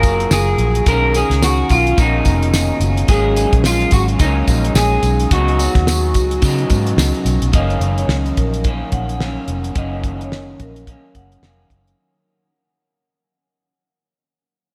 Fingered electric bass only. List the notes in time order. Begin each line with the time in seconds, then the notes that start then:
0.03 F#1
0.31 F#1
0.58 A#1
0.86 B1
1.30 C#2
1.70 B1
1.98 A#1
2.26 F1
2.80 F#1
3.09 G#1
3.53 A#1
3.92 G#1
4.20 C#2
4.48 A#1
4.74 A#1
5.03 B1
5.31 C#2
5.75 D#2
6.15 C#2
6.42 C#3
6.70 G#2
6.97 C#2
7.25 B1
7.42 B1
7.53 F#1
7.80 F#1
8.08 C#2
8.37 A#1
8.92 A#1
9.48 F1
9.75 F#1
10.59 A#1
11.15 F#1
11.42 F1
11.70 F#1